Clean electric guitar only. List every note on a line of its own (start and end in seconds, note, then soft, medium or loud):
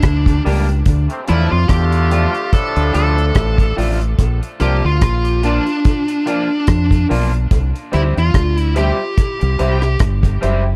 0.45 0.66 G3 medium
0.45 0.66 A#3 loud
0.45 0.66 D4 loud
0.45 0.67 G4 loud
1.28 1.49 F3 medium
1.28 1.49 A3 medium
1.28 1.49 D4 loud
1.28 1.50 F4 loud
2.11 2.32 F3 medium
2.11 2.32 A3 medium
2.11 2.33 D4 medium
2.11 2.33 F4 loud
2.94 3.15 F3 medium
2.94 3.15 A3 medium
2.94 3.15 D4 medium
2.94 3.15 F4 medium
3.77 3.98 F3 medium
3.77 3.98 A3 loud
3.77 3.98 D4 loud
3.77 3.99 F4 loud
4.60 4.81 F3 loud
4.60 4.81 A#3 loud
4.60 4.81 D4 loud
4.60 4.82 F4 loud
5.43 5.64 F3 medium
5.43 5.64 A#3 medium
5.43 5.65 D4 medium
5.43 5.65 F4 medium
6.26 6.47 F3 medium
6.26 6.47 A#3 medium
6.26 6.48 D4 loud
6.26 6.48 F4 medium
7.09 7.30 F3 medium
7.09 7.30 A#3 loud
7.09 7.31 D4 medium
7.09 7.31 F4 medium
7.92 8.13 G3 medium
7.92 8.13 C4 medium
7.92 8.13 E4 medium
7.92 8.14 G4 loud
8.76 8.96 G3 medium
8.76 8.96 C4 medium
8.76 8.97 E4 loud
8.76 8.97 G4 loud
9.59 9.80 G3 medium
9.59 9.80 C4 medium
9.59 9.80 E4 loud
9.59 9.80 G4 loud
10.41 10.62 G3 medium
10.41 10.63 C4 medium
10.41 10.63 E4 loud
10.41 10.63 G4 loud